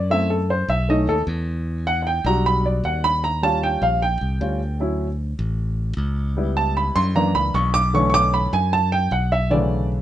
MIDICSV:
0, 0, Header, 1, 3, 480
1, 0, Start_track
1, 0, Key_signature, 2, "minor"
1, 0, Tempo, 392157
1, 110, Time_signature, 4, 2, 24, 8
1, 12261, End_track
2, 0, Start_track
2, 0, Title_t, "Grand piano"
2, 0, Program_c, 0, 0
2, 125, Note_on_c, 0, 57, 56
2, 130, Note_on_c, 0, 60, 52
2, 137, Note_on_c, 0, 64, 59
2, 137, Note_on_c, 0, 76, 100
2, 357, Note_off_c, 0, 76, 0
2, 370, Note_on_c, 0, 69, 71
2, 438, Note_off_c, 0, 57, 0
2, 441, Note_off_c, 0, 60, 0
2, 444, Note_off_c, 0, 64, 0
2, 594, Note_off_c, 0, 69, 0
2, 616, Note_on_c, 0, 72, 81
2, 837, Note_off_c, 0, 72, 0
2, 851, Note_on_c, 0, 76, 94
2, 1075, Note_off_c, 0, 76, 0
2, 1084, Note_on_c, 0, 57, 57
2, 1094, Note_on_c, 0, 61, 52
2, 1100, Note_on_c, 0, 63, 65
2, 1100, Note_on_c, 0, 75, 84
2, 1320, Note_off_c, 0, 75, 0
2, 1331, Note_on_c, 0, 69, 93
2, 1398, Note_off_c, 0, 57, 0
2, 1403, Note_off_c, 0, 61, 0
2, 1406, Note_off_c, 0, 63, 0
2, 1470, Note_off_c, 0, 69, 0
2, 2288, Note_on_c, 0, 78, 100
2, 2459, Note_off_c, 0, 78, 0
2, 2477, Note_on_c, 0, 78, 59
2, 2508, Note_off_c, 0, 78, 0
2, 2531, Note_on_c, 0, 79, 88
2, 2756, Note_off_c, 0, 79, 0
2, 2760, Note_on_c, 0, 55, 60
2, 2767, Note_on_c, 0, 62, 52
2, 2772, Note_on_c, 0, 82, 96
2, 2776, Note_on_c, 0, 66, 62
2, 2996, Note_off_c, 0, 82, 0
2, 3013, Note_on_c, 0, 83, 101
2, 3237, Note_off_c, 0, 83, 0
2, 3252, Note_on_c, 0, 74, 70
2, 3476, Note_off_c, 0, 74, 0
2, 3488, Note_on_c, 0, 78, 87
2, 3715, Note_off_c, 0, 78, 0
2, 3722, Note_on_c, 0, 83, 109
2, 3909, Note_off_c, 0, 55, 0
2, 3913, Note_off_c, 0, 62, 0
2, 3917, Note_off_c, 0, 66, 0
2, 3952, Note_off_c, 0, 83, 0
2, 3964, Note_on_c, 0, 82, 93
2, 4193, Note_off_c, 0, 82, 0
2, 4194, Note_on_c, 0, 55, 58
2, 4202, Note_on_c, 0, 61, 52
2, 4203, Note_on_c, 0, 81, 102
2, 4209, Note_on_c, 0, 65, 63
2, 4432, Note_off_c, 0, 81, 0
2, 4448, Note_on_c, 0, 79, 90
2, 4675, Note_off_c, 0, 79, 0
2, 4683, Note_on_c, 0, 77, 91
2, 4879, Note_off_c, 0, 55, 0
2, 4883, Note_off_c, 0, 61, 0
2, 4887, Note_off_c, 0, 65, 0
2, 4912, Note_off_c, 0, 77, 0
2, 4925, Note_on_c, 0, 79, 87
2, 5392, Note_on_c, 0, 55, 47
2, 5396, Note_on_c, 0, 61, 46
2, 5403, Note_on_c, 0, 65, 54
2, 5609, Note_off_c, 0, 55, 0
2, 5612, Note_off_c, 0, 61, 0
2, 5616, Note_off_c, 0, 65, 0
2, 5832, Note_off_c, 0, 79, 0
2, 5875, Note_on_c, 0, 54, 57
2, 5879, Note_on_c, 0, 61, 52
2, 5887, Note_on_c, 0, 64, 62
2, 6194, Note_off_c, 0, 54, 0
2, 6197, Note_off_c, 0, 61, 0
2, 6201, Note_off_c, 0, 64, 0
2, 7793, Note_on_c, 0, 55, 57
2, 7802, Note_on_c, 0, 59, 52
2, 7809, Note_on_c, 0, 64, 59
2, 8038, Note_on_c, 0, 81, 97
2, 8269, Note_off_c, 0, 81, 0
2, 8283, Note_on_c, 0, 83, 90
2, 8512, Note_off_c, 0, 83, 0
2, 8514, Note_on_c, 0, 84, 116
2, 8706, Note_off_c, 0, 55, 0
2, 8710, Note_off_c, 0, 59, 0
2, 8714, Note_off_c, 0, 64, 0
2, 8747, Note_off_c, 0, 84, 0
2, 8750, Note_on_c, 0, 52, 57
2, 8756, Note_on_c, 0, 58, 54
2, 8760, Note_on_c, 0, 82, 96
2, 8765, Note_on_c, 0, 62, 68
2, 8990, Note_off_c, 0, 82, 0
2, 8995, Note_on_c, 0, 83, 102
2, 9227, Note_off_c, 0, 83, 0
2, 9239, Note_on_c, 0, 85, 98
2, 9436, Note_off_c, 0, 52, 0
2, 9438, Note_off_c, 0, 58, 0
2, 9443, Note_off_c, 0, 62, 0
2, 9469, Note_off_c, 0, 85, 0
2, 9472, Note_on_c, 0, 86, 121
2, 9705, Note_off_c, 0, 86, 0
2, 9714, Note_on_c, 0, 50, 60
2, 9718, Note_on_c, 0, 52, 52
2, 9723, Note_on_c, 0, 57, 53
2, 9727, Note_on_c, 0, 85, 99
2, 9730, Note_on_c, 0, 61, 69
2, 9891, Note_off_c, 0, 85, 0
2, 9910, Note_on_c, 0, 85, 91
2, 9941, Note_off_c, 0, 85, 0
2, 9964, Note_on_c, 0, 86, 125
2, 10191, Note_off_c, 0, 86, 0
2, 10204, Note_on_c, 0, 83, 91
2, 10397, Note_off_c, 0, 50, 0
2, 10399, Note_off_c, 0, 52, 0
2, 10402, Note_off_c, 0, 57, 0
2, 10405, Note_off_c, 0, 61, 0
2, 10431, Note_off_c, 0, 83, 0
2, 10446, Note_on_c, 0, 80, 97
2, 10672, Note_off_c, 0, 80, 0
2, 10685, Note_on_c, 0, 81, 104
2, 10911, Note_off_c, 0, 81, 0
2, 10921, Note_on_c, 0, 79, 97
2, 11149, Note_off_c, 0, 79, 0
2, 11164, Note_on_c, 0, 78, 88
2, 11390, Note_off_c, 0, 78, 0
2, 11408, Note_on_c, 0, 76, 92
2, 11632, Note_off_c, 0, 76, 0
2, 11633, Note_on_c, 0, 50, 62
2, 11637, Note_on_c, 0, 52, 52
2, 11639, Note_on_c, 0, 57, 54
2, 11641, Note_on_c, 0, 74, 88
2, 11645, Note_on_c, 0, 49, 66
2, 12082, Note_off_c, 0, 74, 0
2, 12261, Note_off_c, 0, 49, 0
2, 12261, Note_off_c, 0, 50, 0
2, 12261, Note_off_c, 0, 52, 0
2, 12261, Note_off_c, 0, 57, 0
2, 12261, End_track
3, 0, Start_track
3, 0, Title_t, "Fingered electric bass"
3, 0, Program_c, 1, 33
3, 0, Note_on_c, 1, 42, 89
3, 761, Note_off_c, 1, 42, 0
3, 837, Note_on_c, 1, 35, 97
3, 1282, Note_off_c, 1, 35, 0
3, 1312, Note_on_c, 1, 39, 75
3, 1536, Note_off_c, 1, 39, 0
3, 1552, Note_on_c, 1, 40, 95
3, 2681, Note_off_c, 1, 40, 0
3, 2747, Note_on_c, 1, 35, 97
3, 3422, Note_off_c, 1, 35, 0
3, 3470, Note_on_c, 1, 39, 89
3, 4600, Note_off_c, 1, 39, 0
3, 4671, Note_on_c, 1, 34, 89
3, 5120, Note_off_c, 1, 34, 0
3, 5155, Note_on_c, 1, 36, 72
3, 5378, Note_off_c, 1, 36, 0
3, 5397, Note_on_c, 1, 38, 95
3, 6523, Note_off_c, 1, 38, 0
3, 6594, Note_on_c, 1, 33, 94
3, 7266, Note_off_c, 1, 33, 0
3, 7306, Note_on_c, 1, 37, 91
3, 8437, Note_off_c, 1, 37, 0
3, 8514, Note_on_c, 1, 42, 97
3, 8960, Note_off_c, 1, 42, 0
3, 8991, Note_on_c, 1, 37, 72
3, 9216, Note_off_c, 1, 37, 0
3, 9231, Note_on_c, 1, 35, 95
3, 10358, Note_off_c, 1, 35, 0
3, 10438, Note_on_c, 1, 42, 102
3, 11105, Note_off_c, 1, 42, 0
3, 11152, Note_on_c, 1, 35, 93
3, 12261, Note_off_c, 1, 35, 0
3, 12261, End_track
0, 0, End_of_file